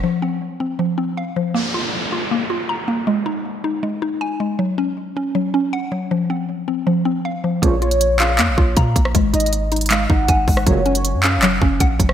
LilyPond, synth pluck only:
\new Staff \with { instrumentName = "Synth pluck" } { \time 4/4 \key bes \minor \tempo 4 = 158 f8 c'4 c'8 f8 c'8 f''8 f8 | bes8 f'4 f'8 bes8 f'8 bes''8 bes8 | aes8 ees'4 ees'8 aes8 ees'8 aes''8 aes8 | ges8 des'4 des'8 ges8 des'8 ges''8 ges8 |
f8 c'4 c'8 f8 c'8 f''8 f8 | bes8 f'4 f'8 bes8 f'8 bes''8 bes8 | aes8 ees'4 ees'8 aes8 ees'8 aes''8 aes8 | ges8 des'4 des'8 ges8 des'8 ges''8 ges8 | }